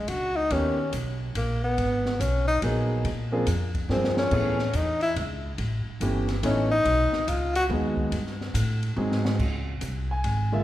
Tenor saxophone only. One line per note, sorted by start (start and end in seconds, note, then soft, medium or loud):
0.00 0.10 G#3 medium
0.09 0.38 F#4 medium
0.36 0.54 D#4 medium
0.52 0.94 C#4 medium
1.36 1.61 A#3 medium
1.64 2.21 B3 medium
2.20 2.47 C#4 medium
2.47 2.61 D#4 medium
3.92 4.16 C4 medium
4.18 4.77 C#4 medium
4.76 5.02 D#4 medium
5.02 5.16 E4 medium
6.45 6.70 C#4 medium
6.71 7.31 D#4 loud
7.29 7.55 F4 medium
7.56 7.65 F#4 loud